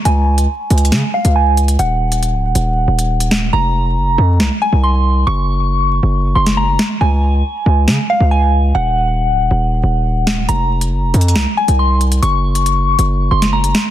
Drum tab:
HH |x--------x--------x-x-x----------x--------x--x--|x--------x--x--------x-----------x-----x--x-----|------------------------------------------------|------------------------------------------------|
SD |------------------------o-----------------------|------------------------------------------o-----|------------------------o-----------------------|---------------------------------o--------o-----|

HH |------------------------------------------------|------------------------------------------------|x--------x--------x-x-x----------x--------x--x--|x--------x--x--------x-----------x-----x--x-----|
SD |------------------------o-----------------------|------------------------------------------o-----|------------------------o-----------------------|---------------------------------o--------o-----|